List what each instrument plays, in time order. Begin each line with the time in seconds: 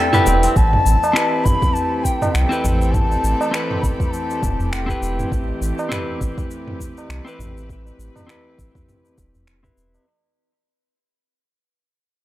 Already playing: kora G3 A3 C4 D4 E4 G4 A4, synth texture E4 E5, clean electric guitar B4, bansuri G5
0.13 kora B3, clean electric guitar E4 G4 B4, mid tom, shaker
0.27 analog synth bass E1, kora C4, tabla tin, shaker
0.43 kora C4, open hi-hat, shaker
0.56 analog synth bass A1, string section E3, bansuri A5, kick, shaker
0.73 mid tom, tabla tin
0.79 string section A3
0.86 analog synth bass A1, shaker
1.03 tabla na, tabla tin, shaker
1.13 clean electric guitar C4 E4 G4 B4, string section C4, finger snap, shaker
1.39 string section G4
1.44 analog synth bass A1, bansuri B5, kick, mid tom, shaker
1.54 string section A4
1.62 kick, tabla ge, shaker
1.74 bansuri A5, shaker
2.04 bansuri G5, kick, shaker
2.22 mid tom, tabla na, shaker
2.33 analog synth bass C2, bansuri G5, finger snap, shaker
2.49 clean electric guitar C4 E4 G4 B4, shaker
2.64 analog synth bass A1, tabla tin, tabla ge, shaker
2.81 shaker
2.92 bansuri A5, kick, mid tom, shaker
3.12 tabla tin, shaker
3.24 analog synth bass A1, shaker
3.41 tabla na, shaker
3.51 clean electric guitar C4 E4 G4, finger snap, shaker
3.55 clean electric guitar B4
3.71 mid tom
3.81 analog synth bass A1, bansuri B5, kick, shaker
4.00 kick, tabla ge, shaker
4.06 bansuri B5
4.11 bansuri A5, shaker
4.30 tabla na, shaker
4.43 analog synth bass E1, kick, mid tom, shaker
4.60 tabla ge, shaker
4.72 bansuri G5, finger snap, shaker
4.86 clean electric guitar C4 E4 G4, kick, shaker
4.91 clean electric guitar B4
5.02 analog synth bass E1, tabla tin, shaker
5.19 mid tom, shaker
5.32 analog synth bass A1, kick, shaker
5.48 tabla tin
5.54 string section B4
5.61 analog synth bass A1, shaker
5.79 tabla na, tabla tin, shaker
5.89 clean electric guitar C4 E4 G4, finger snap, mid tom, shaker
5.93 clean electric guitar B4
6.21 analog synth bass A1, kick, shaker
6.38 kick, tabla ge, shaker
6.51 shaker
6.67 mid tom
6.80 kick, shaker
6.98 tabla na, shaker
7.09 analog synth bass C2, finger snap, shaker
7.25 clean electric guitar C4 E4 G4 B4, shaker
7.39 analog synth bass A1, mid tom, tabla tin, tabla ge, shaker
7.57 shaker
7.69 kick, shaker
7.86 tabla tin, shaker
7.99 analog synth bass A1, shaker
8.16 mid tom, tabla na, shaker
8.27 clean electric guitar C4 E4 G4, finger snap, shaker
8.31 clean electric guitar B4
8.58 analog synth bass A1, kick, shaker
8.75 kick, tabla ge, shaker
8.88 mid tom, shaker
9.05 tabla na, shaker
9.18 analog synth bass E1, kick, shaker
9.35 tabla ge, shaker
9.47 finger snap, shaker
9.63 clean electric guitar C4 E4 G4 B4, kick, mid tom, shaker
9.77 analog synth bass E1, tabla tin, shaker
9.94 tabla na, shaker